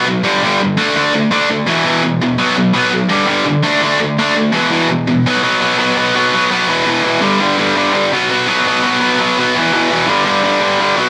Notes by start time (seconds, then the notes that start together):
0.06 B2 F#3
0.23 G2 D3 G3
0.42 G2 D3 G3
0.61 G2 D3
0.77 D3 A3 D4
0.97 D3 A3 D4
1.14 D3 A3
1.31 D3 A3 D4
1.49 D3 A3
1.66 E2 B2 E3
1.84 E2 B2 E3
2.03 E2 B2
2.21 E2 B2
2.38 B2 F#3 B3
2.57 B2 F#3
2.74 B2 F#3 B3
2.92 B2 F#3
3.09 G2 D3 G3
3.27 G2 D3 G3
3.46 G2 D3
3.63 D3 A3 D4
3.82 D3 A3 D4
4.00 D3 A3
4.19 D3 A3 D4
4.36 D3 A3
4.53 E2 B2 E3
4.71 E2 B2 E3
4.89 E2 B2
5.07 E2 B2
5.26 B2 F#3 B3
5.43 B2 F#3 B3
5.61 B2 F#3 B3
5.78 B2 F#3 B3
5.97 B2 F#3 B3
6.15 B2 F#3 B3
6.33 B2 F#3 B3
6.51 B2 F#3 B3
6.67 E2 B2 E3
6.85 E2 B2 E3
7.03 E2 B2 E3
7.21 G2 D3 G3
7.40 G2 D3 G3
7.59 G2 D3 G3
7.76 G2 D3 G3
7.94 G2 D3 G3
8.13 B2 F#3 B3
8.30 B2 F#3 B3
8.48 B2 F#3 B3
8.67 B2 F#3 B3
8.84 B2 F#3 B3
9.00 B2 F#3 B3
9.19 B2 F#3 B3
9.38 B2 F#3 B3
9.55 E2 B2 E3
9.73 E2 B2 E3
9.91 E2 B2 E3
10.07 G2 D3 G3
10.25 G2 D3 G3
10.43 G2 D3 G3
10.62 G2 D3 G3
10.80 G2 D3 G3
10.97 B2 F#3 B3